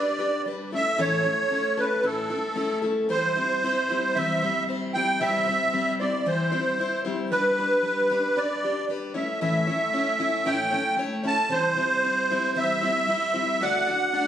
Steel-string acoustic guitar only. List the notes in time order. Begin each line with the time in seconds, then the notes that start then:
Already playing: G3 D4 G4 B4
0.19 D4 G4 B4
0.46 G3 D4 G4 B4
0.72 A3 C#4 E4 A4
0.98 A2 E3 A3 C#4 E4 A4
1.24 A3 C#4 E4 A4
1.50 A3 C#4 E4 A4
1.78 A3 C#4 E4 A4
2.03 A2 E3 A3 C#4 E4 A4
2.30 A3 C#4 E4 A4
2.55 A3 C#4 E4 A4
2.82 A3 C#4 E4 A4
3.09 C3 E3 G3 C4 E4 C5
3.36 G3 C4 E4 C5
3.62 G3 C4 E4 C5
3.89 G3 C4 E4 C5
4.16 C3 E3 G3 C4 E4 C5
4.42 G3 C4 E4 C5
4.68 G3 C4 E4 C5
4.94 G3 C4 E4 C5
5.21 C3 E3 G3 C4 E4 C5
5.47 G3 C4 E4 C5
5.73 G3 C4 E4 C5
6.00 G3 C4 E4 C5
6.26 C3 E3 G3 C4 E4 C5
6.52 G3 C4 E4 C5
6.79 G3 C4 E4 C5
7.05 G3 C4 E4 C5
7.32 G3 D4 G4 B4
7.57 D4 G4 B4
7.83 G3 D4 G4 B4
8.10 D4 G4 B4
8.37 G3 D4 G4 B4
8.63 D4 G4 B4
8.88 G3 D4 G4 B4
9.14 A3 C#4 E4 C#5
9.41 A2 E3 A3 C#4 E4 C#5
9.67 A3 C#4 E4 C#5
9.93 A3 C#4 E4 C#5
10.18 A3 C#4 E4 C#5
10.45 A2 E3 A3 C#4 E4 C#5
10.71 A3 C#4 E4 C#5
10.97 A3 C#4 E4 C#5
11.23 A3 C#4 E4 C#5
11.49 C3 E3 G3 C4 E4 C5
11.76 G3 C4 E4 C5
12.02 G3 C4 E4 C5
12.30 G3 C4 E4 C5
12.55 C3 E3 G3 C4 E4 C5
12.82 G3 C4 E4 C5
13.08 G3 C4 E4 C5
13.33 G3 C4 E4 C5
13.61 D3 A3 D4 F#4 D5
13.87 D4 F#4 D5
14.13 A3 D4 F#4 D5